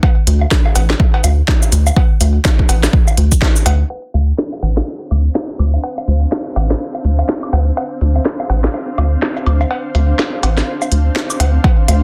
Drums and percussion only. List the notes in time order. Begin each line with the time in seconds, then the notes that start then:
0.03 kick, cowbell, low woodblock
0.27 closed hi-hat
0.41 low woodblock
0.51 kick, snare, cabasa
0.66 low woodblock
0.76 closed hi-hat, cowbell, cabasa
0.90 snare
1.00 kick, low woodblock
1.14 cowbell
1.24 closed hi-hat, cabasa, low woodblock
1.48 kick, snare
1.62 cabasa, low woodblock
1.72 closed hi-hat, cabasa
1.87 cabasa, low woodblock
1.96 kick, cowbell
2.21 closed hi-hat, cabasa, low woodblock
2.45 kick, snare, cabasa, low woodblock
2.59 kick
2.69 closed hi-hat, cowbell, cabasa
2.83 snare, cabasa, low woodblock
2.93 kick
3.08 cabasa, low woodblock
3.17 closed hi-hat
3.32 kick, cabasa
3.42 kick, snare, low woodblock
3.56 cabasa
3.66 closed hi-hat, cowbell, low woodblock
3.90 cowbell, low woodblock
4.14 closed hi-hat, low woodblock
4.38 snare, cabasa
4.53 low woodblock
4.63 closed hi-hat, cowbell, cabasa
4.77 snare, low woodblock
5.11 closed hi-hat, cabasa, high woodblock, low woodblock
5.35 snare, low woodblock
5.49 cabasa
5.59 closed hi-hat, cabasa, high woodblock
5.74 cabasa, low woodblock
5.84 cowbell
5.98 low woodblock
6.08 closed hi-hat, cabasa
6.32 snare, cabasa, low woodblock
6.56 closed hi-hat, cowbell, cabasa, high woodblock, low woodblock
6.70 snare, cabasa
6.95 cabasa, low woodblock
7.04 closed hi-hat
7.19 low woodblock
7.29 snare
7.43 cabasa, high woodblock
7.53 closed hi-hat, cowbell, low woodblock
7.77 cowbell, low woodblock
8.01 closed hi-hat
8.16 low woodblock
8.25 snare, cabasa
8.40 low woodblock
8.50 closed hi-hat, cowbell, cabasa
8.64 snare
8.74 low woodblock
8.98 closed hi-hat, cabasa, high woodblock, low woodblock
9.22 snare
9.37 cabasa, low woodblock
9.46 closed hi-hat, cabasa, high woodblock
9.61 cabasa, low woodblock
9.71 cowbell
9.95 closed hi-hat, cabasa, low woodblock
10.19 snare, cabasa, low woodblock
10.43 closed hi-hat, cowbell, cabasa, high woodblock
10.58 snare, cabasa, low woodblock
10.82 cabasa, low woodblock
10.92 closed hi-hat
11.16 snare, low woodblock
11.30 cabasa, high woodblock
11.40 closed hi-hat, cowbell, low woodblock
11.64 kick, cowbell
11.88 closed hi-hat, low woodblock